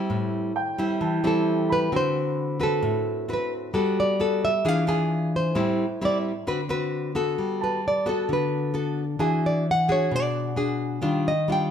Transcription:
Already playing: G3 C4 E4
0.10 A2
0.56 G5
0.78 G3 C4 E4
1.01 E3 A5
1.24 G3 C4 E4 A4
1.69 B4 B5
1.92 D3 C4 F#4
1.96 C5
2.60 C4 F#4 A4 B4
2.83 A2
3.29 C4 F#4 B4
3.33 B4
3.74 G3 B3 F#4 A4
4.00 D5
4.20 B3 F#4 A4
4.45 E5
4.65 E3 D4 F4 G#4 F5
4.87 D4 F4 G#4 G#5
5.36 C5
5.55 A2 G3 C4 E4
6.01 G3 C4 E4 D5
6.47 D3 C4 F#4 B4
6.69 C4 F#4 B4
7.15 B3 F#4 A4
7.38 G3
7.61 B4 A5
7.88 D5
8.06 B3 F#4 A4
8.29 D3
8.33 B4
8.74 B3 F#4 A4
9.19 E3 D4 F#4 G#4 G#5
9.46 D5
9.71 F#5
9.88 D4 F#4 G#4 C#5 F#5
10.11 B2
10.16 D5
10.56 D4 F#4 G#4
11.02 D#3 G3 D4 F4
11.28 D#5
11.48 G3 D4 F4
11.52 G5

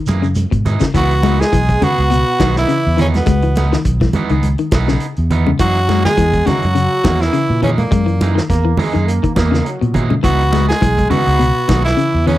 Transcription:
Already playing: D#3
0.06 F#2 E3 A#3 G#4, closed hi-hat, high conga, shekere
0.22 C#3, shekere
0.35 closed hi-hat, high conga, shekere
0.51 G#2 B2, kick, closed hi-hat
0.65 E3 D#4 G#4, closed hi-hat, high conga, low conga, shekere
0.80 C#3, kick, snare, shekere
0.94 C#2 E3 B3 F#4 G#4, muted clean electric guitar stroke, kick, snare, closed hi-hat
1.11 closed hi-hat
1.23 E3 G#3 B3 D#4 G#4, closed hi-hat, high conga
1.40 G#3 G#4, snare
1.52 B1 E3, kick, closed hi-hat
1.69 kick, closed hi-hat
1.82 C#3 B3 F#4 G#4, muted clean electric guitar stroke, closed hi-hat, high conga, low conga
1.98 C#2, closed hi-hat
2.11 B2, closed hi-hat
2.39 B1 D#3 B3 D#4 G#4, kick, snare, closed hi-hat, high conga
2.56 E3 B3 D#4 E4 G#4, snare
2.68 C#3, closed hi-hat
2.87 E2
2.97 C#3 E3 B3 C#4 D#4 G#4, snare, closed hi-hat, low conga
3.14 B2 B3, snare, closed hi-hat, high conga
3.26 C#2 G#3, kick, snare, closed hi-hat
3.42 E3, closed hi-hat
3.55 B3 D#4 G#4, muted clean electric guitar stroke, snare, closed hi-hat, high conga
3.72 D#3, snare
3.85 B1, kick, closed hi-hat
4.01 E3, kick, snare, high conga
4.13 E3 B3 D#4 G#4, closed hi-hat, high conga, low conga
4.29 C#2 D#3 B3 D#4 G#4, closed hi-hat
4.43 closed hi-hat, high conga
4.58 D#3, closed hi-hat
4.71 B1 E3 B3 D#4 G#4, kick, snare, closed hi-hat, high conga
4.88 C#3 B3 D#4 G#4, snare
5.00 closed hi-hat
5.16 E2, closed hi-hat
5.30 E3 B3 D#4, muted clean electric guitar stroke, closed hi-hat, low conga
5.47 C#3, high conga
5.59 F#2 E3 F#3 A#3 D#4 F#4 G#4, kick, closed hi-hat
5.76 closed hi-hat
5.89 G#3 A#3 D#4 G#4, muted clean electric guitar stroke, snare, closed hi-hat, high conga
6.05 G#3 G#4, snare, low conga
6.17 E2 E3, kick, closed hi-hat, high conga
6.33 kick, closed hi-hat
6.46 C#3 E3 A#3 D#4 F#4, muted clean electric guitar stroke, snare, closed hi-hat, high conga, low conga
6.50 F#3
6.63 F#2, closed hi-hat
6.75 C#3, closed hi-hat
7.04 E2 D#3 E3 A#3 D#4 G#4, kick, snare, closed hi-hat, high conga
7.21 E3 A#3 E4 G#4, muted clean electric guitar stroke, snare
7.33 C#3, closed hi-hat
7.50 A#2
7.62 C#3 E3 A#3 C#4 D#4 G#4, closed hi-hat, low conga
7.78 A#2 A#3, closed hi-hat, high conga
7.91 F#2 G#3, kick, closed hi-hat
8.06 E3, closed hi-hat
8.21 E3 A#3 D#4 G#4, closed hi-hat, high conga
8.35 D#3, snare
8.50 E2 A#3, kick, snare, closed hi-hat
8.65 E3
8.77 E3 G#3 A#3 D#4 G#4, open hi-hat, high conga, low conga
8.93 F#2 D#3 A#3 D#4 G#4, closed hi-hat
9.08 A#3, closed hi-hat
9.23 D#3, kick, closed hi-hat
9.35 E2 E3 A#3 D#4 G#4, kick, snare, closed hi-hat, high conga
9.51 C#3 A#3 D#4 G#4, snare
9.66 F#3, closed hi-hat
9.81 A#2 B2, closed hi-hat
9.94 E3 A#3 D#4 G#4, kick, closed hi-hat, low conga
10.10 C#3, high conga
10.23 C#2 E3 B3 D#4 F#4 G#4, kick, closed hi-hat
10.41 closed hi-hat
10.51 E3 G#3 B3 D#4 G#4, snare, closed hi-hat, high conga
10.69 G#3 G#4, snare
10.81 B1 E3, kick, closed hi-hat, high conga
10.98 kick, closed hi-hat, high conga
11.10 C#3 E3 B3 D#4 F#4 G#4, closed hi-hat, high conga, low conga
11.27 C#2 B3 D#4 G#4, closed hi-hat
11.39 B2, closed hi-hat
11.68 B1 D#3 E3 B3 D#4 G#4, kick, snare, closed hi-hat, high conga
11.84 E3 E4, snare
11.97 C#3, closed hi-hat
12.14 E2
12.27 C#3 E3 B3 C#4 D#4 G#4, closed hi-hat, low conga

